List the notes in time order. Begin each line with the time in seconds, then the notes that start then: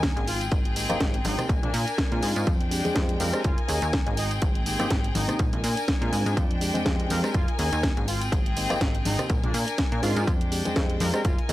Already playing: D#2 D#4 A#4 G#5
0.03 kick, snare, closed hi-hat, tambourine
0.16 G#1 A#3 C#4 D#4 G#4, closed hi-hat
0.27 C4 F4 G#4 G5, open hi-hat, tambourine
0.41 closed hi-hat, tambourine
0.52 G#1, kick, closed hi-hat
0.65 closed hi-hat
0.76 A#3 C4 D#4 G4, open hi-hat, tambourine
0.89 G#1 A#3 C4 D#4 G4, cross-stick, closed hi-hat, tambourine, high conga
1.00 G#1 G4, kick, snare, closed hi-hat, tambourine
1.14 closed hi-hat
1.24 G#1 D#4, open hi-hat, tambourine, high conga
1.38 A#3 C4 D#4 G4, cross-stick, closed hi-hat, tambourine, low conga
1.49 A#1 D4 A#4 G#5, kick, closed hi-hat
1.63 A#1 G#3 C4 D4 F4, closed hi-hat, low conga
1.74 A#2, open hi-hat, tambourine
1.87 closed hi-hat, tambourine
1.98 kick, snare, closed hi-hat
2.11 A#2 G#3 C4 D4 F4, closed hi-hat
2.22 G#2 F4, open hi-hat, tambourine
2.36 G#2, closed hi-hat, tambourine
2.47 F2 G#3 D4 G5, kick, closed hi-hat
2.61 closed hi-hat
2.71 G#3 C4 D4 G4, open hi-hat, tambourine
2.84 F2 G#3 C4 D4 G#4, closed hi-hat, tambourine, high conga
2.95 F2 G#3 C4 D4 G4, kick, snare, closed hi-hat
3.09 closed hi-hat
3.20 F2 A#4, open hi-hat, tambourine, high conga
3.33 G#3 C4 D4 G4 A#4, cross-stick, closed hi-hat, tambourine
3.44 F#1 D#4 F4 A#4 G#5, kick, closed hi-hat, tambourine
3.58 closed hi-hat
3.68 D#2 A#3 C#4 D#4 G#4, open hi-hat, tambourine
3.82 D#2, closed hi-hat, tambourine
3.93 kick, snare, closed hi-hat, tambourine
4.06 G#1 A#3 C#4 D#4 G#4, closed hi-hat
4.17 C4 D#4 G#4 G5, open hi-hat, tambourine
4.31 closed hi-hat, tambourine
4.42 G#1, kick, closed hi-hat
4.55 closed hi-hat
4.66 A#3 C4 D#4 G4, open hi-hat, tambourine
4.79 G#1 A#3 C4 D#4 G4, cross-stick, closed hi-hat, tambourine, high conga
4.90 G#1, kick, snare, closed hi-hat
5.04 closed hi-hat
5.15 G#1 D#4, open hi-hat, tambourine, high conga
5.28 A#3 C4 D#4 G4, cross-stick, closed hi-hat, tambourine, low conga
5.39 A#1 D4 A#4 G#5, kick, closed hi-hat, tambourine
5.53 A#1 G#3 C4 D4 F4, closed hi-hat, low conga
5.64 A#2, open hi-hat, tambourine
5.77 closed hi-hat, tambourine
5.88 kick, snare, closed hi-hat
6.01 A#2 G#3 C4 D4 F4, closed hi-hat
6.13 G#2, open hi-hat, tambourine
6.26 G#2, closed hi-hat, tambourine
6.37 F2 G#3 G5, kick, closed hi-hat, tambourine
6.51 closed hi-hat
6.61 G#3 C4 D4 G4, open hi-hat, tambourine
6.74 F2 G#3 C4 D4 G#4, closed hi-hat, tambourine, high conga
6.85 F2 G#3 C4 D4 G4, kick, snare, closed hi-hat, tambourine
7.00 closed hi-hat
7.10 F2 A#4, open hi-hat, tambourine, high conga
7.23 G#3 C4 D4 G4 A#4, cross-stick, closed hi-hat, tambourine
7.34 F#1 D#4 F4 A#4 G#5, kick, closed hi-hat
7.48 closed hi-hat
7.58 D#2 A#3 C#4 D#4 G#4, open hi-hat, tambourine
7.73 D#2, closed hi-hat, tambourine
7.83 kick, snare, closed hi-hat
7.97 G#1 A#3 C#4 D#4 G#4, closed hi-hat
8.07 C4 F4 G#4 G5, open hi-hat, tambourine
8.21 closed hi-hat, tambourine
8.32 G#1, kick, closed hi-hat
8.46 closed hi-hat
8.56 A#3 C4 D#4 G4, open hi-hat, tambourine
8.70 A#3 C4 D#4 G4, cross-stick, closed hi-hat, tambourine, high conga
8.81 G#1, kick, snare, closed hi-hat
8.95 closed hi-hat
9.05 G#1 D#4, open hi-hat, tambourine, high conga
9.19 A#3 C4 D#4 G4, cross-stick, closed hi-hat, tambourine, low conga
9.30 A#1 D4 A#4 G#5, kick, closed hi-hat, tambourine
9.43 A#1 G#3 C4 D4 F4, closed hi-hat, low conga
9.54 A#2, open hi-hat, tambourine
9.68 closed hi-hat, tambourine
9.78 kick, snare, closed hi-hat, tambourine
9.92 A#2, closed hi-hat
10.02 G#2 G#3 C4 D4 F4, open hi-hat, tambourine
10.16 G#2, closed hi-hat, tambourine
10.27 G#3 G5, kick, closed hi-hat
10.41 closed hi-hat
10.51 G#3 C4 D4 G4, open hi-hat, tambourine
10.65 F2 G#3 C4 D4 G#4, closed hi-hat, tambourine, high conga
10.76 F2 G#3 C4 D4 G4, kick, snare, closed hi-hat, tambourine
10.90 closed hi-hat
11.00 F2 A#4, open hi-hat, tambourine, high conga
11.14 G#3 C4 D4 G4 A#4, cross-stick, closed hi-hat, tambourine
11.25 F#1 D#4 F4 A#4 G#5, kick, closed hi-hat, tambourine
11.38 closed hi-hat
11.49 D#2 A#3 C#4 D#4, open hi-hat